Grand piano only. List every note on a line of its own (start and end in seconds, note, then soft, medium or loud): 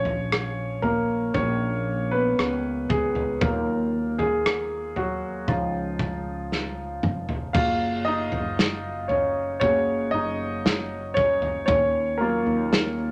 0.00 3.37 F3 soft
0.00 1.35 C#4 medium
0.00 3.37 F4 medium
0.00 1.34 C#5 loud
0.82 1.31 A#3 medium
0.82 1.31 A#4 medium
1.34 2.08 C#4 medium
1.34 2.14 C#5 medium
2.11 2.86 B3 medium
2.11 2.92 B4 medium
2.89 3.02 G#3 medium
2.89 3.01 G#4 medium
3.41 4.10 F#3 soft
3.41 4.15 A#3 medium
3.41 4.10 D#4 soft
3.41 4.10 F4 soft
3.41 4.21 A#4 medium
4.18 4.93 G#3 medium
4.18 4.98 G#4 medium
4.96 5.45 F#3 soft
4.96 5.50 F#4 medium
5.48 7.00 F3 medium
5.48 7.51 C#4 soft
5.48 7.51 D#4 medium
5.48 6.99 F4 medium
7.53 9.06 G#3 soft
7.53 9.06 A#3 soft
7.53 8.03 F4 medium
7.53 9.06 F#4 soft
7.53 8.02 F5 medium
8.05 9.07 D#4 medium
8.05 9.12 D#5 loud
9.08 9.23 C#4 medium
9.08 9.20 C#5 medium
9.60 10.09 G#3 soft
9.60 10.10 A#3 soft
9.60 10.10 C#4 medium
9.60 10.10 F#4 soft
9.60 10.14 C#5 medium
10.11 11.13 D#4 medium
10.11 11.19 D#5 loud
11.14 11.29 C#4 medium
11.14 11.26 C#5 medium
11.66 12.17 C#4 medium
11.66 12.21 C#5 medium
12.18 13.12 F#3 soft
12.18 13.12 A#3 medium
12.18 13.12 C#4 medium
12.18 13.12 F4 medium
12.18 13.12 A#4 medium